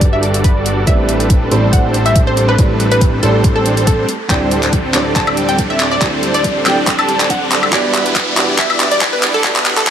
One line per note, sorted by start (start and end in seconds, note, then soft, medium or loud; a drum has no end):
0.00 0.85 G1 loud
0.00 0.85 G3 loud
0.00 0.89 G3 medium
0.00 0.85 D4 medium
0.00 0.89 D4 medium
0.00 0.85 F#4 medium
0.00 0.89 F#4 medium
0.00 0.85 A4 medium
0.00 0.89 A4 medium
0.00 0.88 B4 loud
0.00 0.85 D5 loud
0.00 kick loud
0.00 closed hi-hat medium
0.00 riser medium
0.13 0.39 E5 medium
0.23 closed hi-hat medium
0.34 closed hi-hat medium
0.44 0.80 B4 medium
0.44 kick loud
0.44 closed hi-hat medium
0.66 closed hi-hat medium
0.85 1.49 A1 loud
0.85 1.48 A3 medium
0.85 1.49 C4 medium
0.85 1.50 C4 medium
0.85 1.48 E4 medium
0.85 1.49 G4 medium
0.85 1.49 B4 loud
0.85 1.49 B4 medium
0.85 1.05 E5 loud
0.85 kick loud
0.85 closed hi-hat medium
0.89 1.50 D5 loud
1.09 closed hi-hat medium
1.20 closed hi-hat medium
1.30 kick loud
1.30 closed hi-hat medium
1.49 2.57 A1 loud
1.49 2.56 G3 medium
1.49 2.55 A3 medium
1.49 2.56 C4 medium
1.49 2.56 D4 medium
1.49 2.56 E4 medium
1.49 2.56 G4 medium
1.49 2.56 A4 medium
1.49 2.56 C5 loud
1.49 2.57 C5 medium
1.49 2.57 D5 loud
1.49 2.56 B5 medium
1.49 closed hi-hat medium
1.73 2.00 F#5 medium
1.73 kick medium
1.73 closed hi-hat medium
1.94 closed hi-hat medium
2.06 2.23 E5 medium
2.06 closed hi-hat medium
2.16 kick loud
2.16 closed hi-hat medium
2.27 2.45 C5 medium
2.37 closed hi-hat medium
2.49 2.83 B4 loud
2.58 3.21 A1 loud
2.58 3.20 G3 medium
2.58 2.72 A3 medium
2.58 3.20 C4 medium
2.58 3.20 D4 medium
2.58 2.72 E4 medium
2.58 2.72 G4 medium
2.58 3.20 A4 medium
2.58 3.20 B4 loud
2.58 2.72 B4 medium
2.58 2.72 C5 medium
2.58 2.72 D5 medium
2.58 kick loud
2.58 closed hi-hat medium
2.80 closed hi-hat medium
2.92 3.18 B4 loud
2.92 closed hi-hat medium
3.01 kick loud
3.01 closed hi-hat medium
3.21 4.05 A1 loud
3.21 4.07 G3 loud
3.21 4.06 A3 medium
3.21 4.07 C4 medium
3.21 4.07 D4 medium
3.21 4.07 E4 medium
3.21 4.07 G4 medium
3.21 4.07 A4 medium
3.21 3.50 A4 loud
3.21 4.07 C5 loud
3.21 4.08 C5 medium
3.21 4.08 B5 medium
3.21 closed hi-hat medium
3.25 4.08 D5 medium
3.44 kick loud
3.44 closed hi-hat medium
3.56 3.82 A4 medium
3.66 closed hi-hat medium
3.77 closed hi-hat medium
3.87 4.23 A4 medium
3.87 kick medium
3.87 closed hi-hat medium
4.09 closed hi-hat medium
4.28 4.92 D1 loud
4.28 4.91 D3 medium
4.28 4.92 G3 medium
4.28 4.91 C4 medium
4.28 4.92 C4 medium
4.28 4.92 D4 medium
4.28 4.92 E4 medium
4.28 4.92 G4 medium
4.28 4.92 A4 medium
4.28 4.92 C5 loud
4.28 4.48 G5 loud
4.28 kick loud
4.28 clap soft
4.28 closed hi-hat medium
4.32 4.93 D5 loud
4.51 closed hi-hat medium
4.63 clap soft
4.63 closed hi-hat medium
4.73 kick loud
4.73 closed hi-hat medium
4.92 6.00 D1 loud
4.92 5.98 D3 medium
4.92 5.99 G3 loud
4.92 5.99 C4 medium
4.92 5.99 D4 medium
4.92 5.99 E4 medium
4.92 6.00 G4 medium
4.92 5.99 A4 medium
4.92 6.00 C5 loud
4.92 5.99 D5 loud
4.92 clap medium
4.92 closed hi-hat medium
5.16 5.43 A5 medium
5.16 kick loud
5.16 clap medium
5.16 closed hi-hat medium
5.27 high woodblock medium
5.37 closed hi-hat medium
5.49 5.66 G5 medium
5.49 closed hi-hat medium
5.59 kick medium
5.59 closed hi-hat medium
5.70 5.88 E5 medium
5.80 clap medium
5.80 closed hi-hat medium
5.91 6.26 D5 loud
6.01 6.64 D1 loud
6.01 6.14 D3 medium
6.01 6.63 G3 medium
6.01 6.15 C4 medium
6.01 6.63 C4 medium
6.01 6.63 D4 medium
6.01 6.15 E4 medium
6.01 6.15 G4 medium
6.01 6.63 A4 medium
6.01 6.63 C5 loud
6.01 6.15 D5 loud
6.01 kick loud
6.01 clap medium
6.01 closed hi-hat medium
6.23 closed hi-hat medium
6.34 6.61 D5 loud
6.34 closed hi-hat medium
6.44 kick loud
6.44 closed hi-hat medium
6.64 7.74 D1 loud
6.64 7.70 D3 medium
6.64 7.71 G3 loud
6.64 7.70 C4 medium
6.64 7.71 C4 medium
6.64 7.71 D4 medium
6.64 7.71 E4 medium
6.64 7.71 G4 medium
6.64 7.71 A4 medium
6.64 7.71 D5 loud
6.64 7.72 D5 medium
6.64 6.93 G5 loud
6.64 clap medium
6.64 closed hi-hat medium
6.64 high woodblock medium
6.87 kick loud
6.87 clap medium
6.87 closed hi-hat medium
6.99 7.25 A5 medium
6.99 high woodblock medium
7.09 closed hi-hat medium
7.20 clap medium
7.20 closed hi-hat medium
7.30 7.66 F#5 medium
7.30 kick medium
7.30 closed hi-hat medium
7.51 clap medium
7.51 closed hi-hat medium
7.63 high woodblock medium
7.71 8.35 E1 medium
7.71 8.34 E3 medium
7.71 8.35 G3 medium
7.71 8.34 B3 medium
7.71 8.35 B3 medium
7.71 8.35 D4 medium
7.71 8.35 E4 medium
7.71 8.35 F#4 medium
7.71 8.35 G4 medium
7.71 8.35 B4 loud
7.71 7.91 D5 medium
7.71 8.36 D5 loud
7.71 kick loud
7.71 clap medium
7.71 closed hi-hat medium
7.94 clap medium
7.94 closed hi-hat medium
8.06 closed hi-hat medium
8.16 kick loud
8.16 clap medium
8.16 closed hi-hat medium
8.35 9.42 E1 loud
8.35 9.41 E3 medium
8.35 9.42 G3 loud
8.35 9.41 B3 medium
8.35 9.42 B3 medium
8.35 9.42 D4 medium
8.35 9.42 E4 medium
8.35 9.42 F#4 medium
8.35 9.42 G4 medium
8.35 9.42 D5 loud
8.35 clap medium
8.35 closed hi-hat medium
8.39 9.43 B4 loud
8.58 8.85 E5 loud
8.58 kick loud
8.58 clap medium
8.58 closed hi-hat medium
8.70 high woodblock medium
8.80 clap medium
8.80 closed hi-hat medium
8.91 9.09 D5 medium
8.91 closed hi-hat medium
9.01 kick loud
9.01 clap medium
9.01 closed hi-hat medium
9.13 9.30 B4 medium
9.23 clap medium
9.23 closed hi-hat medium
9.34 9.69 A4 loud
9.43 9.90 E1 loud
9.43 9.57 E3 medium
9.43 9.90 G3 medium
9.43 9.57 B3 medium
9.43 9.90 B3 medium
9.43 9.90 E4 medium
9.43 9.58 F#4 medium
9.43 9.58 G4 medium
9.43 9.90 B4 loud
9.43 9.58 D5 loud
9.43 kick loud
9.43 clap medium
9.43 closed hi-hat medium
9.56 clap medium
9.66 clap medium
9.66 closed hi-hat medium
9.77 9.90 A4 loud
9.77 clap medium
9.77 closed hi-hat medium
9.87 kick loud
9.87 clap loud
9.87 closed hi-hat medium